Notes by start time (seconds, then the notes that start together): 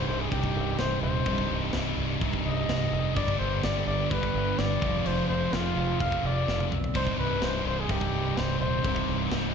Already playing: C2 G2 C3 G3 D#4
0.01 G2
0.08 C1 G2 C5
0.12 C2
0.16 C2 G2
0.21 G2 G#4
0.28 C2 G2
0.32 C1 C2 G2 C3 G3 D#4 G4, kick, crash
0.39 C2 G2
0.44 kick
0.48 G2
0.56 C1 C2 G2
0.64 C2 G2
0.71 G2
0.78 C1 G2 C5, snare, crash
0.86 G2
0.96 C2 G2
1.02 D#1 G2 C5
1.10 C2 G2
1.18 G2
1.26 C1 C2 G2 C3 G3 D#4, kick, crash
1.35 C2 G2, kick
1.44 G2
1.50 C1 C2 G2
1.58 C2 G2
1.66 G2
1.73 C1 G2, snare, crash
1.82 C2 G2
1.89 C2 G2
1.95 C1 C2 G2
2.04 C2 G2
2.11 C2
2.15 G2
2.21 C1 C2 G2 C3 G3 D#4, kick, crash
2.27 C2 G2
2.33 C2, kick
2.37 C2 G2
2.45 C1 C2 G2 D#5
2.53 C2 G2
2.60 C2 G2
2.69 C1 C2, snare, crash
2.78 C2
2.83 C2 G2
2.93 F1 C2 G2
2.99 C2 G2
3.07 C2 G2
3.16 G1 G2 D3 G3 B3 D4 G4 D5, kick, crash
3.24 G2 D3, kick
3.31 G2 D3
3.39 G1 G2 D3 C5
3.46 G2 D3
3.55 G2 D3
3.62 G1 G2 D3 D5, snare, crash
3.69 G2 D3
3.77 G2
3.81 G2 D3
3.87 G1 D3 D5
3.92 G2 D3
3.99 G2
4.05 G2 D3
4.10 G1 G2 D3 G3 B3 D4 G4 B4, kick, crash
4.15 G2
4.20 G2 D3, kick
4.27 G2 D3
4.35 G1 G2 D3
4.43 G2 D3
4.51 G2 D3
4.58 G1 G2 D3 D5, snare, crash
4.66 G2 D3
4.74 G2 D3
4.82 F1 F2 C3 F3 G#3 C4 F4, kick
4.91 F2 C3
4.98 F2 C3
5.05 F1 F2 C3 C5, crash
5.14 F2 C3
5.21 F2 C3
5.29 F1 F2 C3 C5
5.36 C3
5.43 C3
5.51 F1 F2 C3 F4, snare, crash
5.58 F2 C3
5.66 F2 C3
5.74 F1 F2 C3 G#3 C4 F4
5.78 F2 C3 F3
5.89 F2 C3
5.96 F1 F2 C3
6.00 F2 F5, kick, crash
6.12 F2 C3, kick
6.18 F2 C3
6.24 F1 F2 C3 D5
6.33 F2 C3
6.42 F2 C3
6.48 F1 C3, snare
6.57 F2 C3, high tom
6.65 F2 C3
6.70 B1, mid tom
6.84 floor tom
6.94 C1 C2 G2 C3 G3 D#4 C5, kick, splash, crash
7.02 C2 G2
7.07 kick
7.11 G2
7.18 C1 C2 G2 B4
7.25 C2 G2
7.34 G2
7.40 C1 C2 G2, snare, crash
7.44 C5
7.49 C2 G2
7.54 C2 G2
7.63 C1 C2 G2
7.67 C5
7.71 C2 G2
7.79 C2 G2 G#4
7.86 C1 C2 G2, kick, crash
7.90 G2 C3 G3 D#4 G4
7.97 C2
8.01 C2 G2, kick
8.08 G2
8.12 C1 C2 G2
8.20 C2 G2
8.32 G2
8.37 C1 G2 C5, snare, crash
8.44 C2 G2
8.52 C2 G2
8.59 D#1 C2 G2 C5
8.66 C2 G2
8.75 C2 G2
8.84 C1 C2 G2 C3 G3 D#4, kick, crash
8.93 G2, kick
9.00 G2
9.07 C1 C2 G2
9.14 C2 G2
9.21 C2 G2
9.29 C1 C2 G2, snare, crash
9.39 G2
9.45 C2 G2